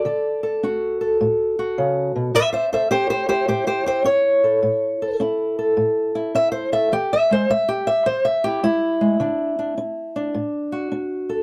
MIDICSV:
0, 0, Header, 1, 2, 480
1, 0, Start_track
1, 0, Tempo, 571429
1, 50, Time_signature, 4, 2, 24, 8
1, 9600, End_track
2, 0, Start_track
2, 0, Title_t, "Steel-string acoustic guitar"
2, 0, Program_c, 0, 25
2, 0, Note_on_c, 0, 74, 102
2, 42, Note_on_c, 0, 50, 66
2, 48, Note_on_c, 0, 69, 47
2, 359, Note_off_c, 0, 69, 0
2, 362, Note_on_c, 0, 69, 52
2, 493, Note_off_c, 0, 50, 0
2, 532, Note_on_c, 0, 62, 63
2, 536, Note_off_c, 0, 74, 0
2, 536, Note_on_c, 0, 66, 50
2, 844, Note_off_c, 0, 69, 0
2, 847, Note_on_c, 0, 69, 44
2, 979, Note_off_c, 0, 62, 0
2, 1013, Note_on_c, 0, 45, 65
2, 1325, Note_off_c, 0, 66, 0
2, 1335, Note_on_c, 0, 66, 52
2, 1459, Note_off_c, 0, 45, 0
2, 1495, Note_on_c, 0, 49, 65
2, 1808, Note_off_c, 0, 49, 0
2, 1811, Note_on_c, 0, 47, 58
2, 1956, Note_off_c, 0, 66, 0
2, 1967, Note_off_c, 0, 47, 0
2, 1970, Note_on_c, 0, 45, 72
2, 1973, Note_on_c, 0, 72, 85
2, 1978, Note_on_c, 0, 76, 112
2, 2021, Note_off_c, 0, 72, 0
2, 2118, Note_off_c, 0, 76, 0
2, 2122, Note_on_c, 0, 72, 84
2, 2132, Note_on_c, 0, 76, 89
2, 2227, Note_off_c, 0, 72, 0
2, 2285, Note_off_c, 0, 69, 0
2, 2288, Note_off_c, 0, 76, 0
2, 2289, Note_on_c, 0, 69, 48
2, 2292, Note_on_c, 0, 72, 80
2, 2301, Note_on_c, 0, 76, 82
2, 2367, Note_off_c, 0, 72, 0
2, 2418, Note_off_c, 0, 45, 0
2, 2439, Note_off_c, 0, 69, 0
2, 2442, Note_on_c, 0, 67, 95
2, 2445, Note_off_c, 0, 76, 0
2, 2446, Note_on_c, 0, 61, 62
2, 2449, Note_on_c, 0, 72, 105
2, 2594, Note_off_c, 0, 67, 0
2, 2595, Note_off_c, 0, 72, 0
2, 2604, Note_on_c, 0, 67, 75
2, 2606, Note_on_c, 0, 72, 93
2, 2751, Note_off_c, 0, 67, 0
2, 2755, Note_off_c, 0, 72, 0
2, 2761, Note_on_c, 0, 67, 87
2, 2765, Note_on_c, 0, 72, 100
2, 2770, Note_on_c, 0, 64, 50
2, 2896, Note_off_c, 0, 61, 0
2, 2916, Note_off_c, 0, 67, 0
2, 2921, Note_off_c, 0, 72, 0
2, 2923, Note_on_c, 0, 45, 61
2, 2927, Note_on_c, 0, 67, 78
2, 2931, Note_on_c, 0, 72, 86
2, 3071, Note_off_c, 0, 67, 0
2, 3076, Note_off_c, 0, 72, 0
2, 3081, Note_on_c, 0, 67, 77
2, 3086, Note_on_c, 0, 72, 88
2, 3235, Note_off_c, 0, 67, 0
2, 3245, Note_off_c, 0, 72, 0
2, 3245, Note_on_c, 0, 67, 77
2, 3255, Note_on_c, 0, 72, 96
2, 3374, Note_off_c, 0, 45, 0
2, 3396, Note_on_c, 0, 61, 62
2, 3403, Note_off_c, 0, 72, 0
2, 3406, Note_on_c, 0, 73, 105
2, 3408, Note_off_c, 0, 67, 0
2, 3728, Note_on_c, 0, 69, 45
2, 3850, Note_off_c, 0, 61, 0
2, 3872, Note_off_c, 0, 69, 0
2, 3887, Note_on_c, 0, 45, 70
2, 4217, Note_on_c, 0, 69, 48
2, 4335, Note_off_c, 0, 45, 0
2, 4366, Note_on_c, 0, 61, 62
2, 4368, Note_off_c, 0, 73, 0
2, 4371, Note_off_c, 0, 64, 0
2, 4375, Note_on_c, 0, 64, 49
2, 4683, Note_off_c, 0, 69, 0
2, 4693, Note_on_c, 0, 69, 47
2, 4815, Note_off_c, 0, 61, 0
2, 4846, Note_on_c, 0, 45, 65
2, 5158, Note_off_c, 0, 64, 0
2, 5168, Note_on_c, 0, 64, 49
2, 5295, Note_off_c, 0, 45, 0
2, 5331, Note_on_c, 0, 61, 61
2, 5338, Note_on_c, 0, 76, 100
2, 5471, Note_off_c, 0, 76, 0
2, 5474, Note_on_c, 0, 72, 85
2, 5637, Note_off_c, 0, 69, 0
2, 5642, Note_off_c, 0, 72, 0
2, 5647, Note_on_c, 0, 69, 45
2, 5652, Note_on_c, 0, 76, 93
2, 5778, Note_off_c, 0, 61, 0
2, 5790, Note_off_c, 0, 69, 0
2, 5791, Note_off_c, 0, 64, 0
2, 5811, Note_off_c, 0, 76, 0
2, 5814, Note_on_c, 0, 52, 67
2, 5820, Note_on_c, 0, 67, 90
2, 5973, Note_off_c, 0, 67, 0
2, 5988, Note_on_c, 0, 76, 95
2, 6139, Note_off_c, 0, 76, 0
2, 6139, Note_on_c, 0, 56, 51
2, 6152, Note_on_c, 0, 72, 97
2, 6259, Note_off_c, 0, 52, 0
2, 6287, Note_off_c, 0, 56, 0
2, 6297, Note_on_c, 0, 56, 62
2, 6301, Note_off_c, 0, 72, 0
2, 6304, Note_on_c, 0, 76, 107
2, 6455, Note_on_c, 0, 67, 88
2, 6457, Note_off_c, 0, 76, 0
2, 6610, Note_on_c, 0, 76, 106
2, 6612, Note_off_c, 0, 67, 0
2, 6740, Note_off_c, 0, 56, 0
2, 6770, Note_off_c, 0, 76, 0
2, 6771, Note_on_c, 0, 72, 92
2, 6777, Note_on_c, 0, 52, 62
2, 6928, Note_on_c, 0, 76, 95
2, 6930, Note_off_c, 0, 72, 0
2, 7089, Note_off_c, 0, 76, 0
2, 7090, Note_on_c, 0, 67, 95
2, 7105, Note_on_c, 0, 64, 51
2, 7221, Note_off_c, 0, 52, 0
2, 7245, Note_off_c, 0, 64, 0
2, 7250, Note_off_c, 0, 67, 0
2, 7251, Note_on_c, 0, 56, 61
2, 7255, Note_on_c, 0, 64, 102
2, 7558, Note_off_c, 0, 56, 0
2, 7568, Note_on_c, 0, 56, 48
2, 7711, Note_off_c, 0, 56, 0
2, 7726, Note_on_c, 0, 50, 77
2, 7733, Note_on_c, 0, 62, 46
2, 8043, Note_off_c, 0, 62, 0
2, 8053, Note_on_c, 0, 62, 50
2, 8176, Note_off_c, 0, 50, 0
2, 8202, Note_off_c, 0, 62, 0
2, 8212, Note_on_c, 0, 62, 68
2, 8523, Note_off_c, 0, 62, 0
2, 8533, Note_on_c, 0, 62, 51
2, 8690, Note_on_c, 0, 45, 62
2, 8693, Note_off_c, 0, 64, 0
2, 9007, Note_on_c, 0, 66, 52
2, 9138, Note_off_c, 0, 45, 0
2, 9160, Note_off_c, 0, 62, 0
2, 9170, Note_on_c, 0, 62, 62
2, 9487, Note_on_c, 0, 69, 48
2, 9600, Note_off_c, 0, 62, 0
2, 9600, Note_off_c, 0, 66, 0
2, 9600, Note_off_c, 0, 69, 0
2, 9600, End_track
0, 0, End_of_file